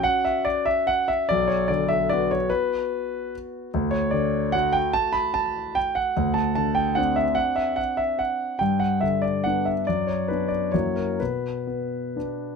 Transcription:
X:1
M:3/4
L:1/8
Q:1/4=146
K:Bm
V:1 name="Grand piano"
f e d e f e | d c d e d c | B4 z2 | z c d2 f g |
a b a2 g f- | f a a g f e | f e f e f2 | g f e d f e |
d c B d c ^A | B6 |]
V:2 name="Grand piano"
[CF]6 | B,,,2 D,2 [B,F]2- | [B,F]6 | D,,2 D,2 [A,F]2- |
[A,F]6 | D,,2 D,2 [=CD]2- | [=CD]6 | G,,2 D,2 [B,D]2 |
F,,2 [B,D]2 [F,,F,^A,E]2 | B,,2 B,2 [B,D]2 |]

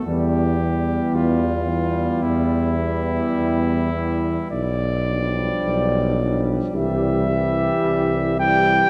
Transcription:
X:1
M:4/4
L:1/16
Q:1/4=54
K:Ephr
V:1 name="Cornet"
G4 F4 E8 | d6- d z e6 g2 |]
V:2 name="French horn section"
B,2 B,4 B,4 B,4 B,2 | z2 D4 D2 G2 G4 G2 |]
V:3 name="Trombone section" clef=bass
G,2 G,4 G,4 G,4 G,2 | z2 G,4 G,2 G,2 G,4 G,2 |]
V:4 name="Trombone" clef=bass
E,2 E,4 E,4 E,4 E,2 | z2 F,4 F,2 E,2 E,4 E,2 |]
V:5 name="Tuba" clef=bass
E,,4 E,,4 E,,4 E,,4 | B,,,4 B,,,4 C,,4 C,,4 |]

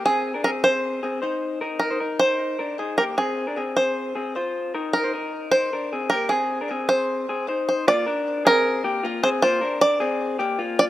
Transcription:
X:1
M:4/4
L:1/16
Q:1/4=154
K:Bbmix
V:1 name="Five-string banjo"
A4 B2 c6 z4 | z2 B4 c6 z2 B2 | A6 c6 z4 | z2 B6 c4 z2 B2 |
A6 c6 z2 c2 | d6 B8 c2 | c4 d8 z2 d2 |]
V:2 name="Clean electric guitar"
[CA]3 [DB] [CA]6 [CA]2 [Ec]4 | [EB]3 [Ec] [EB]6 [DB]2 [EA]2 [B,G]2 | [CA]3 [DB] [CA]6 [CA]2 [Fc]4 | [EB]3 [Ec] [EB]6 [DB]2 [CA]2 [B,G]2 |
[CA]3 [DB] [CA]6 [CA]2 [Ec]4 | [B,F]2 [DB]4 [CA]4 [B,G]2 [B,F]2 [CA]2 | [B,F]2 [DB]4 [CA]4 [B,G]2 [B,F]4 |]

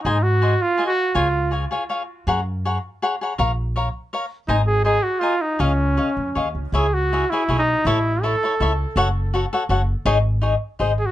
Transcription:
X:1
M:3/4
L:1/16
Q:1/4=162
K:Db
V:1 name="Cavaquinho"
[Acea]2 z2 [Acea]2 z2 [Acea]2 z2 | [Adfa]2 z2 [Adfa]2 [Adfa]2 [Adfa]2 z2 | [Adgb]2 z2 [Adgb]2 z2 [Adgb]2 [Adgb]2 | [Bdfb]2 z2 [Bdfb]2 z2 [Bdfb]2 z2 |
[ceab]2 z2 [ceab]2 z2 [ceab]2 z2 | [Adef]2 z2 [Adef]2 z2 [Adef]2 z2 | [K:C#m] [EGce]2 z2 [EGce]2 [EGce]2 [EGce]2 z2 | [EAce]2 z2 [EAce]2 [EAce]2 [EAce]2 z2 |
[FAcf]2 z2 [FAcf]2 [FAcf]2 [FAcf]2 z2 | [DGcd]2 z2 [DGcd]2 z2 [DG^Bd]2 z2 |]
V:2 name="Trumpet"
E2 G4 F3 G3 | F4 z8 | z12 | z12 |
E2 A2 A2 G2 F2 E2 | D8- D2 z2 | [K:C#m] G2 F4 E3 D3 | E4 A6 z2 |
z12 | z8 z2 G F |]
V:3 name="Upright bass" clef=bass
A,,8 z4 | D,,8 z4 | G,,8 z4 | B,,,8 z4 |
A,,,8 z4 | D,,6 F,,2 E,,2 D,,2 | [K:C#m] C,,8 B,,,4 | A,,,8 C,,4 |
F,,,8 F,,,4 | G,,,8 G,,,4 |]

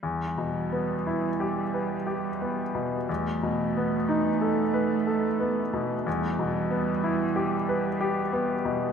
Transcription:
X:1
M:3/4
L:1/8
Q:1/4=61
K:Em
V:1 name="Grand piano"
(3E,, B,, B, (3E G B (3G B, B,, | (3E,, B,, B, (3^D A B (3A B, B,, | (3E,, B,, B, (3E G B (3G B, B,, |]
V:2 name="Cello" clef=bass
G,6 | A,6 | G,6 |]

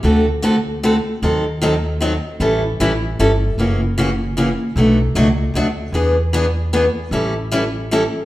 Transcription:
X:1
M:3/4
L:1/16
Q:"Swing" 1/4=153
K:Amix
V:1 name="Steel-string acoustic guitar"
[D,A,=CFA]2 z2 [D,A,CFA] z3 [D,A,CFA] z3 | [^D,F,^B,^DA]2 z2 [D,F,B,DA] z3 [D,F,B,DA] z3 | [E,G,CEA]2 z2 [E,G,CEA] z3 [E,G,CEA] z3 | [C,E,^A,CF]2 z2 [C,E,A,CF] z3 [C,E,A,CF] z3 |
[B,,F,A,DF]2 z2 [B,,F,A,DF] z3 [B,,F,A,DF] z3 | [E,B,D^G]2 z2 [E,B,DG] z3 [E,B,DG] z3 | [E,G,CEA]2 z2 [E,G,CEA] z3 [E,G,CEA] z3 |]
V:2 name="Upright bass" clef=bass
D,,12 | ^D,,12 | A,,,4 A,,,4 G,,,4 | F,,,12 |
B,,,4 C,,4 D,,4 | E,,12 | A,,,12 |]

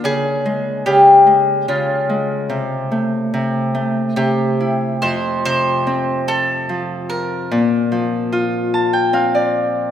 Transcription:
X:1
M:3/4
L:1/16
Q:1/4=73
K:F
V:1 name="Mandolin"
_A4 G4 F4- | F8 G4 | c2 c4 A4 B2- | B2 z8 z2 |]
V:2 name="Harp"
z12 | z12 | z12 | z6 a g f d3 |]
V:3 name="Harp" clef=bass
_D,2 _A,2 D,2 A,2 D,2 A,2 | C,2 A,2 C,2 A,2 C,2 E2 | F,,2 C,2 C4 F,4 | B,,2 F,2 F4 C4 |]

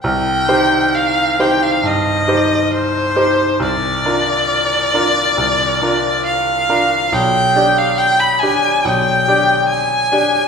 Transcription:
X:1
M:4/4
L:1/16
Q:1/4=69
K:Cm
V:1 name="Violin"
g4 f2 g f e4 c4 | d12 f4 | g3 f g =b a2 g4 a4 |]
V:2 name="Grand piano"
C,,2 [EGc]4 [EGc]2 G,,2 [EGc]4 [EGc]2 | C,,2 [DFB]4 [DFB]2 C,,2 [DFB]4 [DFB]2 | =B,,,2 [DGd]4 [DGd]2 B,,,2 [DGd]4 [DGd]2 |]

